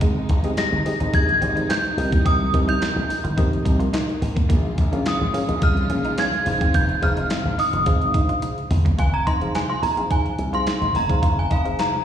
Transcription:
Already playing: C3 D#3 G#3 D#4
0.01 G#1 G#3, kick, closed hi-hat
0.29 G#1, muted clean electric guitar stroke, kick, closed hi-hat
0.44 C4 D#4 G4 G#4 D#5, closed hi-hat
0.57 C4 D#4 G4 G#4 D#5 A#6, muted clean electric guitar stroke, snare, clap, closed hi-hat
0.72 G1
0.86 C4 D#4 G4 G#4 D#5, open hi-hat
1.00 G#1 C4 D#4 G4 G#4 D#5, closed hi-hat
1.13 A#1 G#6, muted clean electric guitar stroke, kick, closed hi-hat
1.29 closed hi-hat
1.41 G#1 C4 D#4 G4 G#4 D5, closed hi-hat
1.49 D#5
1.56 D#4, closed hi-hat
1.69 C4 G6, snare, clap, closed hi-hat
1.84 muted clean electric guitar stroke, closed hi-hat
1.97 C2 A#3 C4 D#4 G4 A#4 D#5, open hi-hat
2.12 A#3, kick, closed hi-hat
2.25 C2 C4 D#6, kick, closed hi-hat
2.53 C2 C4 D#4 G4 A#4 D#5, muted clean electric guitar stroke, kick, closed hi-hat
2.68 D#4 G6, closed hi-hat
2.81 muted clean electric guitar stroke, snare, clap, closed hi-hat
2.96 A#1
3.09 D#4, open hi-hat
3.24 G1 F4, closed hi-hat
3.37 A#1 C4 D#4 G4 A#4 D#5, muted clean electric guitar stroke, kick, closed hi-hat
3.53 closed hi-hat
3.65 C2 D#4, kick, closed hi-hat
3.80 F4, closed hi-hat
3.93 D#4, snare, clap, closed hi-hat
4.09 closed hi-hat
4.22 G#1, muted clean electric guitar stroke, open hi-hat
4.36 A#3, kick, closed hi-hat
4.49 A#1 C#3 F3 G#3 A#3 F4, kick, closed hi-hat
4.78 A#1, muted clean electric guitar stroke, kick, closed hi-hat
4.92 C#4 F4 G#4 A#4 F5, closed hi-hat
5.05 C#4 F4 G#4 A#4 F5 D#6, muted clean electric guitar stroke, snare, clap, closed hi-hat
5.21 G#1
5.33 C#4 F4 G#4 A#4 F5, open hi-hat
5.48 A#1 C#4 D#4 F4 G#4 A#4 F5, closed hi-hat
5.62 C2 F6, muted clean electric guitar stroke, kick, closed hi-hat
5.77 closed hi-hat
5.89 A#1 C#4 F4 G#4 A#4 F5, closed hi-hat
6.05 D#4, closed hi-hat
6.18 C#4 G#6, snare, clap, closed hi-hat
6.33 muted clean electric guitar stroke, closed hi-hat
6.45 F1 D#3 C4 D#4 F4 G#4 C5 F5, open hi-hat
6.61 C4, kick, closed hi-hat
6.74 F1 F4 G6, kick, closed hi-hat
6.89 closed hi-hat
7.02 F1 D#4 F4 G#4 C5 F5 F6, muted clean electric guitar stroke, kick, closed hi-hat
7.17 D#4, closed hi-hat
7.30 muted clean electric guitar stroke, snare, clap, closed hi-hat
7.45 G#1
7.58 D#4 D#6, open hi-hat
7.73 F1 F4, closed hi-hat
7.86 G#1 D#4 F4 G#4 C5 F5, muted clean electric guitar stroke, kick, closed hi-hat
8.02 closed hi-hat
8.14 A#1 D#4, kick, closed hi-hat
8.29 F4, closed hi-hat
8.42 D#4, closed hi-hat, high tom
8.58 closed hi-hat
8.70 G1, muted clean electric guitar stroke, mid tom, open hi-hat
8.85 A#3, closed hi-hat, floor tom
8.98 F1 F4 G#5, kick, closed hi-hat
9.14 A#5
9.27 F1 D#4 C6, kick, closed hi-hat
9.41 D#4 G#4 C5 F5, muted clean electric guitar stroke, closed hi-hat
9.55 G#5, snare, clap, closed hi-hat
9.69 F4 C6
9.82 A#1 A#5, muted clean electric guitar stroke, open hi-hat
9.97 C4 D#4 G#4 C5 F5, closed hi-hat
10.10 D#4 G#5, kick, closed hi-hat
10.25 muted clean electric guitar stroke, closed hi-hat
10.38 C2, closed hi-hat
10.53 D#4 F4 G#4 C5 F5 C6, closed hi-hat
10.66 muted clean electric guitar stroke, snare, clap, closed hi-hat
10.81 G#1 D#4, closed hi-hat
10.94 F1 A#3 A#5, open hi-hat
11.09 G1 D#4 G#4 C5 F5, kick, closed hi-hat
11.22 F1 F4, kick, closed hi-hat
11.39 G#5
11.51 F1 D#4 F5, kick, closed hi-hat
11.65 D#4 G#4 C5 F5, muted clean electric guitar stroke, closed hi-hat
11.79 A#5, snare, clap, closed hi-hat
11.93 F4

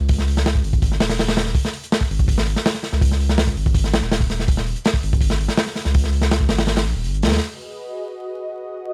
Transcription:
0.00 C#2
0.09 kick, open hi-hat
0.18 snare
0.28 open hi-hat
0.37 snare
0.46 snare, open hi-hat
0.55 kick
0.64 G#1, open hi-hat
0.73 kick
0.82 kick, open hi-hat
0.92 snare
1.00 D#1, snare, open hi-hat
1.09 snare, open hi-hat
1.19 snare, open hi-hat
1.28 snare, open hi-hat
1.37 snare, open hi-hat
1.46 snare
1.55 kick, open hi-hat
1.65 snare
1.73 open hi-hat
1.83 closed hi-hat
1.92 snare, open hi-hat
2.01 kick
2.10 G#1, open hi-hat
2.19 kick
2.28 kick, open hi-hat
2.38 snare
2.46 G#1, open hi-hat
2.56 snare
2.66 snare, open hi-hat
2.75 snare
2.83 snare, open hi-hat
2.93 C#2, snare
3.02 kick, open hi-hat
3.12 snare
3.20 open hi-hat
3.29 snare
3.38 snare, open hi-hat
3.47 kick
3.57 G#1, open hi-hat
3.66 kick
3.74 kick, open hi-hat
3.84 snare
3.93 B1, snare, open hi-hat
4.02 D#1, snare
4.11 snare, open hi-hat
4.20 kick
4.30 snare, open hi-hat
4.39 snare
4.48 kick, open hi-hat
4.57 snare
4.66 open hi-hat
4.76 closed hi-hat
4.85 snare, open hi-hat
4.94 kick
5.03 G#1, open hi-hat
5.13 kick
5.21 kick, open hi-hat
5.30 snare
5.40 G#1, open hi-hat
5.48 snare
5.57 snare, open hi-hat
5.67 snare
5.75 snare, open hi-hat
5.85 C#2, snare
5.94 kick, open hi-hat
6.04 snare
6.13 open hi-hat
6.21 snare
6.31 snare, open hi-hat
6.40 kick
6.49 G#1, snare, open hi-hat
6.58 snare, open hi-hat
6.67 snare, open hi-hat
6.77 snare, open hi-hat
6.86 B1
6.95 D#1
7.04 G#1, open hi-hat
7.14 closed hi-hat
7.22 D#2, snare, open hi-hat
7.27 snare, open hi-hat
7.32 snare, open hi-hat
7.35 snare, open hi-hat
7.41 F#4 G#4 B4 D#5

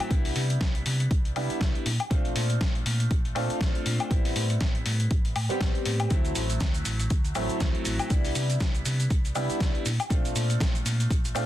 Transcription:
0.00 closed hi-hat, high woodblock
0.10 C2 G3 B3 D4 E4, kick, closed hi-hat
0.25 open hi-hat
0.36 C3, open hi-hat
0.50 closed hi-hat
0.61 C2, kick, snare, closed hi-hat
0.75 closed hi-hat
0.86 C3, open hi-hat
1.00 closed hi-hat
1.11 C2, kick, closed hi-hat
1.25 closed hi-hat
1.36 C3 G3 B3 D4 E4, open hi-hat, high woodblock
1.50 muted fingered electric bass stroke, closed hi-hat
1.61 C2, kick, snare, closed hi-hat
1.75 closed hi-hat
1.86 A#2, open hi-hat
2.00 closed hi-hat, high woodblock
2.10 A#1 A3 C4 D4 F4, kick, closed hi-hat
2.25 closed hi-hat
2.36 A#2, open hi-hat
2.50 closed hi-hat
2.61 A#1, kick, snare, closed hi-hat
2.75 closed hi-hat
2.86 A#2, open hi-hat
3.00 closed hi-hat
3.11 A#1, kick, closed hi-hat
3.25 closed hi-hat
3.35 A#2 A3 C4 D4 F4, open hi-hat, high woodblock
3.50 muted fingered electric bass stroke, closed hi-hat
3.61 A#1, kick, snare, closed hi-hat
3.75 closed hi-hat
3.86 A#2, open hi-hat
4.00 closed hi-hat, high woodblock
4.10 A1 G3 B3 C4 E4, kick, closed hi-hat
4.25 open hi-hat
4.36 A2, open hi-hat
4.50 closed hi-hat
4.61 A1, kick, snare, closed hi-hat
4.75 closed hi-hat
4.86 A2, open hi-hat
5.00 closed hi-hat
5.11 A1, kick, closed hi-hat
5.25 closed hi-hat
5.36 A2, open hi-hat, high woodblock
5.49 G3 B3 C4 G4, muted fingered electric bass stroke, closed hi-hat
5.61 A1, kick, snare, closed hi-hat
5.75 closed hi-hat
5.85 A2, open hi-hat
6.00 closed hi-hat, high woodblock
6.10 D2 F#3 A3 C4 E4, kick, closed hi-hat, shaker
6.25 closed hi-hat, shaker
6.35 A1, open hi-hat, shaker
6.50 closed hi-hat, shaker
6.60 kick, snare, closed hi-hat, shaker
6.74 closed hi-hat, shaker
6.85 A1, open hi-hat, shaker
7.00 closed hi-hat, shaker
7.10 kick, closed hi-hat, shaker
7.25 closed hi-hat, shaker
7.35 A1 F#3 A3 C4 E4, open hi-hat, high woodblock, shaker
7.50 muted fingered electric bass stroke, closed hi-hat, shaker
7.60 D2, kick, snare, closed hi-hat, shaker
7.75 closed hi-hat
7.85 A1, open hi-hat, shaker
7.99 closed hi-hat, high woodblock, shaker
8.10 C2 G3 B3 D4 E4, kick, closed hi-hat, shaker
8.25 open hi-hat, shaker
8.35 C3, open hi-hat, shaker
8.50 closed hi-hat, shaker
8.60 C2, kick, snare, closed hi-hat, shaker
8.75 closed hi-hat, shaker
8.85 C3, open hi-hat, shaker
9.00 closed hi-hat, shaker
9.10 C2, kick, closed hi-hat, shaker
9.25 closed hi-hat, shaker
9.35 C3 G3 B3 D4 E4, open hi-hat, high woodblock, shaker
9.50 muted fingered electric bass stroke, closed hi-hat, shaker
9.60 C2, kick, snare, closed hi-hat, shaker
9.75 closed hi-hat
9.86 A#2, open hi-hat, shaker
10.00 closed hi-hat, high woodblock, shaker
10.10 A#1 A3 C4 D4 F4, kick, closed hi-hat, shaker
10.25 closed hi-hat, shaker
10.35 A#2, open hi-hat, shaker
10.50 closed hi-hat, shaker
10.60 A#1, kick, snare, closed hi-hat, shaker
10.75 closed hi-hat, shaker
10.85 A#2, open hi-hat, shaker
11.00 closed hi-hat, shaker
11.11 A#1, kick, closed hi-hat, shaker
11.25 closed hi-hat, shaker
11.35 A#2 A3 C4 D4 F4, open hi-hat, high woodblock, shaker

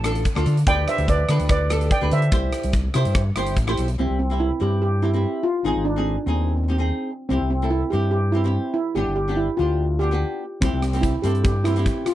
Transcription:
Already playing: A1
0.04 D4 F4 A4, cross-stick, closed hi-hat
0.15 closed hi-hat
0.25 kick, closed hi-hat
0.35 D2 D4 F4 A4, cross-stick
0.46 D3, closed hi-hat
0.57 closed hi-hat
0.66 D2 D4 G4 B4 D5 G5, kick, closed hi-hat
0.88 C5 E5, cross-stick, closed hi-hat
0.98 D2, closed hi-hat
1.08 B4 D5, kick, closed hi-hat
1.29 D3 D4 G4 B4, cross-stick, closed hi-hat
1.39 D2, closed hi-hat
1.49 B4 D5, kick, cross-stick, closed hi-hat
1.69 D4 G4 A4, cross-stick, closed hi-hat
1.81 closed hi-hat
1.91 D5 G5, kick, closed hi-hat
2.01 D2 D4 G4 B4
2.11 D3 C5 E5, closed hi-hat
2.22 closed hi-hat
2.32 C2 E4 G4 C5, kick, closed hi-hat
2.53 cross-stick, closed hi-hat
2.63 C2, closed hi-hat
2.73 kick, closed hi-hat
2.94 C3 E4 G4 C5, cross-stick, closed hi-hat
3.05 G2, closed hi-hat
3.15 kick, cross-stick, closed hi-hat
3.36 G1 E4 G4 C5, cross-stick, closed hi-hat
3.46 closed hi-hat
3.56 A1, kick, closed hi-hat
3.67 E4 G4 C5, cross-stick
3.77 B1, closed hi-hat
3.88 closed hi-hat
3.98 C2 C4 E4 G4
4.10 C2
4.19 C4
4.30 C4 E4 G4
4.40 E4
4.60 G2 C4 E4 G4
4.82 G4
5.02 C4 E4 G4
5.13 C4 E4 G4
5.43 F4
5.64 G#1 C4 D#4 G#4
5.76 G#1
5.85 D4
5.96 C4 D#4 G#4
6.26 D#2 C4 D#4 G#4
6.35 C4
6.42 C4
6.49 C4
6.57 C4
6.63 C4
6.68 C4 D#4 G4
6.78 C4 D#4 G#4
7.29 C2 C4 E4 G4
7.41 C2
7.50 C4
7.62 C4 E4 A4
7.70 E4
7.90 G2 C4 E4 G4
8.11 G4
8.32 C4 E4 G4
8.44 C4 E4 G4
8.74 E4
8.95 G1 B3 D4 G4
9.08 G1
9.16 G4
9.28 B3 D4 G4
9.36 E4
9.57 D2 B3 D4 F4 G4
9.99 B3 D4 G4
10.11 B3 D4 G4
10.61 C2 C4 E4 G4, kick, closed hi-hat
10.73 C2
10.82 C4, cross-stick, closed hi-hat
10.93 C4 E4 G4, closed hi-hat
11.01 E4, kick, closed hi-hat
11.22 G2 C4 E4 G4 A4, closed hi-hat
11.35 closed hi-hat
11.44 G4, kick, closed hi-hat
11.64 C4 E4 G4, cross-stick, closed hi-hat
11.76 C4 E4 G4, closed hi-hat
11.86 kick, closed hi-hat
12.06 F4, cross-stick, closed hi-hat

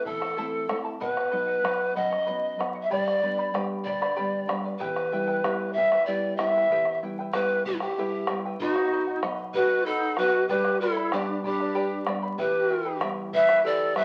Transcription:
Already playing: A3 C4 E4
0.05 E2 E4 A4 E5 A5, bombo low
0.21 E4 A4 A5, bombo rim
0.37 A3 C4 E4 A4 C5 E5 A5, bombo rim
0.68 A3 C4 E4 A4 E5 A5, bombo rim
0.84 E4 A4 A5, bombo rim
1.01 B2 B4 D#5 F#5, bombo low
1.17 bombo rim
1.31 F#3 B3 D#4 B4 D#5 F#5
1.47 D#5 F#5
1.64 F#3 B3 D#4 B4 D#5 F#5, bombo rim
1.81 bombo rim
1.95 F#2 B4 D#5 F#5, bombo low
2.11 D#5 F#5, bombo rim
2.26 F#3 B3 D#4 B4 D#5 F#5
2.59 F#3 B3 D#4 B4 D#5 F#5, bombo rim
2.75 D#5 F#5
2.83 E5
2.90 G2 G4 B4 D5 G5 B5, bombo low
3.08 bombo rim
3.22 G3 B3 D4 B4 D5 G5 B5
3.38 B4 D5 B5
3.54 G3 B3 D4 G4 B4 D5 G5 B5, bombo rim
3.71 bombo rim
3.84 D3 B4 D5 G5 B5, bombo low
4.01 B4 D5 B5, bombo rim
4.16 G3 B3 D4 G4 B4 D5 G5 B5
4.48 G3 B3 D4 B4 D5 G5 B5, bombo rim
4.64 B4 D5 B5
4.79 E2 E4 G4 B4 E5 G5, bombo low
4.96 bombo rim
5.12 G3 B3 E4 B4 E5 G5
5.27 E4 B4 G5
5.44 G3 B3 E4 G4 B4 E5 G5, bombo rim
5.61 bombo rim
5.73 B2 E4 E5, bombo low
5.77 B4 G5
5.92 E4 B4 G5, bombo rim
6.06 G3 B3 E4 G4 B4 D5 E5 G5
6.37 G3 B3 E4 B4 E5 G5, bombo rim
6.56 E4 B4 G5
6.70 E2 E4 G4 B4 E5 G5, bombo rim, bombo low
6.85 bombo rim
7.02 G3 B3 E4 B4 E5 G5
7.19 E4 B4 G5
7.33 G3 B3 E4 G4 B4 E5 G5, bombo rim
7.65 B2 E4 G4 B4 E5 G5, bombo rim, bombo low
7.72 E4
7.80 E4 G4 B4 G5, bombo rim
7.96 G3 B3 E4 G4 B4 E5 G5, bombo rim
8.12 bombo rim
8.27 G3 B3 E4 B4 E5 G5, bombo rim
8.45 E4 B4 G5
8.59 B2 D#4 F#4 B4 D#5 F#5, bombo low
8.76 bombo rim
8.92 B4 D#5 F#5
9.07 D#5 F#5
9.22 F#3 B3 D#4 B4 D#5 F#5, bombo rim
9.39 bombo rim
9.54 G4 B4 D#5 F#5, bombo low
9.58 F#4
9.70 D#5 F#5
9.86 D#4 A4 B4 D#5 F#5
10.17 F#3 B3 D#4 F#4 B4 D#5 F#5, bombo rim
10.33 D#5 F#5
10.48 G2 G4 B4 D5 G5 B5, bombo low
10.65 bombo rim
10.81 E4 A4 B4 D5 G5 B5
10.96 B4 D5 B5
11.12 G3 B3 D4 G4 B4 D5 G5 B5, bombo rim
11.29 bombo rim
11.44 D4 G4 B4 D5 G5 B5, bombo low
11.60 B4 D5 B5
11.75 G4 B4 D5 G5 B5
12.07 G3 B3 D4 B4 D5 G5 B5, bombo rim
12.22 B4 D5 B5
12.38 E2 E4 G4 B4 E5 G5, bombo low
12.70 E4 B4 E5 G5
12.85 E4 B4 G5
13.00 G3 B3 E4 G4 B4 E5 G5, bombo rim
13.17 bombo rim
13.33 E4 B4 E5 G5, bombo low
13.49 E4 B4 G5, bombo rim
13.64 E4 G4 A4 B4 D5 E5 G5
13.95 G3 B3 E4 B4 E5 G5, bombo rim

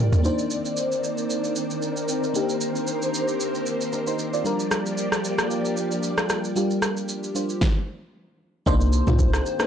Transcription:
Already playing: F3 G3 A#3 D4 F4 G4 A#4 D5
0.13 floor tom, shaker
0.23 D#3 A#3 C4 D4 D#4 A#4 C5, shaker
0.39 shaker
0.50 shaker
0.65 shaker
0.77 shaker
0.92 shaker
1.04 shaker
1.18 shaker
1.30 shaker
1.44 shaker
1.56 shaker
1.71 shaker
1.82 shaker
1.97 shaker
2.08 shaker
2.23 shaker
2.34 A#3 D4 D#4 G4 C5, shaker
2.49 shaker
2.61 shaker
2.76 shaker
2.87 shaker
3.02 shaker
3.14 shaker
3.28 shaker
3.40 shaker
3.55 shaker
3.66 shaker
3.81 shaker
3.93 D4 A#4, shaker
4.07 D#4 C5, shaker
4.19 shaker
4.34 F4 D5, shaker
4.44 F3 G3 A#3 D4 F4 G4 A#4 D5, shaker
4.60 shaker
4.71 cross-stick, shaker
4.86 shaker
4.98 shaker
5.12 cross-stick, shaker
5.25 shaker
5.39 cross-stick, shaker
5.51 shaker
5.65 shaker
5.77 shaker
5.92 shaker
6.03 shaker
6.18 cross-stick, shaker
6.29 cross-stick, shaker
6.44 shaker
6.56 G3 D4 F4 G4, shaker
6.70 shaker
6.82 cross-stick, shaker
6.97 shaker
7.09 shaker
7.24 shaker
7.35 G3 D4 F4 C5, shaker
7.49 shaker
7.61 kick, snare
8.66 C2 D#3 A#3 C4 D4 D#4 G4 C5, kick, shaker
8.81 shaker
8.93 shaker
9.07 C2 A#3 D4 D#4 F4, mid tom, shaker
9.19 kick, shaker
9.33 cross-stick, shaker
9.46 shaker
9.59 A#3 D4 D#4 B4, cross-stick, shaker

